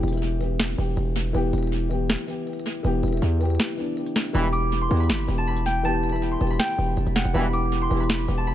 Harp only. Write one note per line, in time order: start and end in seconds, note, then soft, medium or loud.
4.35 4.87 B5 loud
4.52 5.74 D6 medium
4.81 5.06 C6 medium
5.00 5.09 B5 medium
5.09 5.47 B5 medium
5.38 5.84 A5 medium
5.47 6.12 B5 medium
5.66 6.59 G5 medium
5.85 7.30 A5 loud
6.12 6.37 B5 medium
6.31 6.57 C6 medium
6.51 7.35 B5 medium
6.59 7.21 G5 loud
7.15 8.54 F#5 medium
7.35 7.88 B5 loud
7.53 8.54 D6 medium
7.82 8.06 C6 medium
8.00 8.09 B5 medium
8.09 8.47 B5 medium
8.38 8.54 A5 medium
8.47 8.54 B5 medium